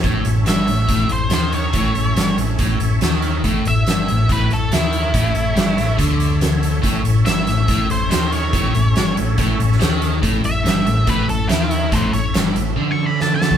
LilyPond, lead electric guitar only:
\new Staff \with { instrumentName = "Lead electric guitar" } { \time 4/4 \key a \mixolydian \tempo 4 = 142 r4 e''4. c''8 c''8 cis''8~ | cis''4. r2 r8 | r8 e''4. b'8 a'8 e'4~ | e'2 r2 |
r4 e''4. c''8 c''8 cis''8~ | cis''4. r2 r8 | r8 e''4. b'8 a'8 e'4 | <a' c''>8 cis''8 r4 \tuplet 3/2 { r8 cis'''8 b''8 a''8 a''8. r16 } | }